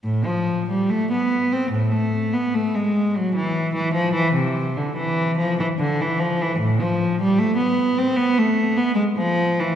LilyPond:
\new Staff \with { instrumentName = "Cello" } { \clef bass \time 4/4 \key a \minor \tempo 4 = 74 a,16 f8 g16 a16 b8 c'16 a,16 a8 b16 a16 gis8 fis16 | e8 e16 f16 e16 c8 d16 e8 f16 e16 d16 e16 f16 e16 | a,16 f8 g16 a16 b8 c'16 b16 a8 b16 gis16 f8 e16 | }